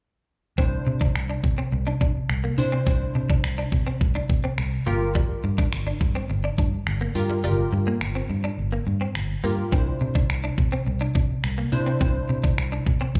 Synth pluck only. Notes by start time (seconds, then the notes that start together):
0.58 D4 E4 C5
2.58 D4 E4 C5
2.86 D4 E4 C5
4.86 F4 G4 A#4
7.15 F4 G4 A#4
7.44 F4 G4 A#4
9.44 F4 G4 A#4
9.72 D4 E4 C5
11.72 D4 E4 C5
12.01 D4 E4 C5